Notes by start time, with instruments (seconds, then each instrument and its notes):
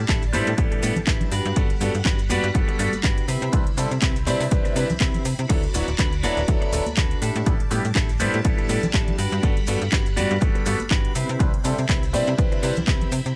Already playing: string machine G3 D5 A5
0.08 fm bass A1, clean electric guitar D4 E4 G4 A4, kick, clap, closed hi-hat, maracas
0.23 closed hi-hat, maracas
0.33 fm bass A2, grand piano G3 B3 D4 E4 C5, clean electric guitar D4 E4 G4 A4, open hi-hat, high conga, maracas
0.47 fm bass A2, closed hi-hat, maracas
0.57 fm bass A1, grand piano G3 B3 D4 E4 A4, kick, closed hi-hat, maracas
0.71 fm bass A2, muted clean electric guitar stroke, closed hi-hat
0.82 fm bass A2, grand piano G3 B3 D4 E4 A4, muted clean electric guitar stroke, open hi-hat, maracas
0.96 fm bass A1, closed hi-hat, low conga, maracas
1.07 fm bass A1, clean electric guitar D4 E4 G4 B4, kick, clap, closed hi-hat, maracas
1.21 closed hi-hat, low conga
1.31 fm bass G2, clean electric guitar D4 F#4 G4 B4, string machine F#5 B5, open hi-hat, maracas
1.45 fm bass G2, closed hi-hat, maracas
1.56 fm bass G1, grand piano G3 B3 D4 F#4 A4, kick, closed hi-hat, maracas
1.70 muted clean electric guitar stroke, closed hi-hat
1.80 fm bass G2, grand piano G3 B3 D4 F#4 A4, open hi-hat, maracas
1.94 fm bass G2, closed hi-hat, maracas
2.05 fm bass G1, clean electric guitar D4 F#4 G4 B4, kick, clap, closed hi-hat, maracas
2.19 closed hi-hat, maracas
2.29 fm bass G2, grand piano G3 B3 D4 F#4 D5, clean electric guitar D4 F#4 G4 B4, open hi-hat, high conga, maracas
2.43 fm bass G2, closed hi-hat, maracas
2.54 fm bass G1, grand piano G3 B3 D4 F#4 A4, kick, closed hi-hat, maracas
2.68 muted clean electric guitar stroke, closed hi-hat
2.79 fm bass G2, grand piano G3 B3 D4 F#4 A4, muted clean electric guitar stroke, open hi-hat, maracas
2.93 fm bass G1, closed hi-hat, high conga, maracas
3.03 fm bass G1, clean electric guitar D4 F#4 G4 B4, kick, clap, closed hi-hat, maracas
3.18 closed hi-hat
3.28 fm bass C3, clean electric guitar C4 E4 G4 B4, string machine C4 E4, open hi-hat, maracas
3.42 fm bass C3, closed hi-hat, maracas
3.53 fm bass C2, grand piano G3 C4 D4 E4 B4, kick, closed hi-hat, maracas
3.66 fm bass C3, muted clean electric guitar stroke, closed hi-hat
3.77 fm bass C3, grand piano G3 C4 D4 E4 A4, open hi-hat, maracas
3.91 fm bass C3, closed hi-hat, maracas
4.01 fm bass C2, clean electric guitar C4 E4 G4 B4, kick, clap, closed hi-hat, maracas
4.16 closed hi-hat, maracas
4.27 fm bass C3, grand piano G3 C4 D4 E4 D5, clean electric guitar C4 E4 G4 B4, clap, open hi-hat, high conga, maracas
4.40 fm bass C3, open hi-hat, maracas
4.51 fm bass C2, grand piano G3 C4 D4 E4 B4, kick, closed hi-hat, maracas
4.65 fm bass C3, muted clean electric guitar stroke, closed hi-hat, maracas
4.76 fm bass C3, grand piano G3 C4 D4 E4 B4, muted clean electric guitar stroke, open hi-hat, maracas
4.89 fm bass C2, closed hi-hat, low conga, maracas
5.00 fm bass C2, clean electric guitar C4 E4 G4 B4, kick, clap, closed hi-hat, maracas
5.14 closed hi-hat, low conga, maracas
5.25 fm bass C3, open hi-hat, maracas
5.39 fm bass C3, closed hi-hat, maracas
5.49 fm bass D2, grand piano F#3 B3 D4 E4 A4, string machine F#4 D5, muted clean electric guitar stroke, kick, closed hi-hat, crash, maracas
5.63 muted clean electric guitar stroke, closed hi-hat
5.74 fm bass D1, grand piano F#3 B3 D4 E4 F#4, open hi-hat, maracas
5.88 fm bass D1, closed hi-hat, maracas
5.98 fm bass D2, clean electric guitar D4 F#4 A4 B4, kick, clap, closed hi-hat
6.12 closed hi-hat, maracas
6.23 fm bass D1, grand piano F#3 B3 D4 E4 D5, clean electric guitar D4 F#4 A4 B4, open hi-hat, high conga, maracas
6.37 fm bass D1, closed hi-hat, maracas
6.48 fm bass D2, grand piano F#3 B3 D4 E4 A4, kick, closed hi-hat, maracas
6.62 muted clean electric guitar stroke, closed hi-hat
6.72 fm bass D1, grand piano F#3 B3 D4 E4 A4, muted clean electric guitar stroke, open hi-hat, maracas
6.86 fm bass D2, closed hi-hat, high conga, maracas
6.97 fm bass D2, clean electric guitar D4 F#4 A4 B4, kick, clap, closed hi-hat, maracas
7.11 closed hi-hat
7.21 fm bass A2, string machine G3 D5 A5, clean electric guitar D4 E4 G4 A4, open hi-hat, maracas
7.35 fm bass A2, closed hi-hat, maracas
7.46 fm bass A1, grand piano G3 B3 D4 E4 A4, kick, closed hi-hat, maracas
7.60 fm bass A2, muted clean electric guitar stroke, closed hi-hat
7.71 fm bass A2, grand piano G3 B3 D4 E4 G4, open hi-hat, maracas
7.85 fm bass A2, closed hi-hat, maracas
7.95 fm bass A1, clean electric guitar D4 E4 G4 A4, kick, clap, closed hi-hat, maracas
8.09 closed hi-hat, maracas
8.20 fm bass A2, grand piano G3 B3 D4 E4 C5, clean electric guitar D4 E4 G4 A4, open hi-hat, high conga, maracas
8.34 fm bass A2, closed hi-hat, maracas
8.44 fm bass A1, grand piano G3 B3 D4 E4 A4, kick, closed hi-hat, maracas
8.58 fm bass A2, muted clean electric guitar stroke, closed hi-hat
8.69 fm bass A2, grand piano G3 B3 D4 E4 A4, muted clean electric guitar stroke, open hi-hat, maracas
8.83 fm bass A1, closed hi-hat, low conga, maracas
8.94 fm bass A1, clean electric guitar D4 E4 G4 A4, kick, clap, closed hi-hat
9.08 closed hi-hat, low conga
9.18 fm bass G2, clean electric guitar D4 F#4 G4 B4, string machine F#5 B5, open hi-hat, maracas
9.32 fm bass G2, closed hi-hat, maracas
9.43 fm bass G1, grand piano G3 B3 D4 F#4 A4, kick, closed hi-hat, maracas
9.57 muted clean electric guitar stroke, closed hi-hat
9.67 fm bass G2, grand piano G3 B3 D4 F#4 A4, open hi-hat, maracas
9.81 fm bass G2, closed hi-hat, maracas
9.92 fm bass G1, clean electric guitar D4 F#4 G4 B4, kick, clap, closed hi-hat, maracas
10.06 closed hi-hat, maracas
10.16 fm bass G2, grand piano G3 B3 D4 F#4 D5, clean electric guitar D4 F#4 G4 B4, open hi-hat, high conga, maracas
10.30 fm bass G2, closed hi-hat, maracas
10.41 fm bass G1, grand piano G3 B3 D4 F#4 A4, kick, closed hi-hat, maracas
10.55 muted clean electric guitar stroke, closed hi-hat
10.66 fm bass G2, grand piano G3 B3 D4 F#4 A4, muted clean electric guitar stroke, open hi-hat, maracas
10.80 fm bass G1, closed hi-hat, high conga, maracas
10.91 fm bass G1, clean electric guitar D4 F#4 G4 B4, kick, clap, closed hi-hat, maracas
11.05 closed hi-hat
11.15 fm bass C3, clean electric guitar C4 E4 G4 B4, string machine C4 E4, open hi-hat, maracas
11.29 fm bass C3, closed hi-hat, maracas
11.39 fm bass C2, grand piano G3 C4 D4 E4 B4, kick, closed hi-hat, maracas
11.54 fm bass C3, muted clean electric guitar stroke, closed hi-hat
11.64 fm bass C3, grand piano G3 C4 D4 E4 A4, open hi-hat, maracas
11.78 fm bass C3, closed hi-hat, maracas
11.89 fm bass C2, clean electric guitar C4 E4 G4 B4, kick, clap, closed hi-hat, maracas
12.03 closed hi-hat, maracas
12.13 fm bass C3, grand piano G3 C4 D4 E4 D5, clean electric guitar C4 E4 G4 B4, open hi-hat, high conga, maracas
12.28 fm bass C3, closed hi-hat, maracas
12.38 fm bass C2, grand piano G3 C4 D4 E4 B4, kick, closed hi-hat, maracas
12.52 fm bass C3, muted clean electric guitar stroke, closed hi-hat
12.62 fm bass C3, grand piano G3 C4 D4 E4 B4, muted clean electric guitar stroke, open hi-hat, maracas
12.75 fm bass C2, closed hi-hat, low conga, maracas
12.87 fm bass C2, clean electric guitar C4 E4 G4 B4, kick, clap, closed hi-hat, maracas
13.01 closed hi-hat, low conga
13.12 fm bass C3, open hi-hat, maracas
13.26 fm bass C3, closed hi-hat, maracas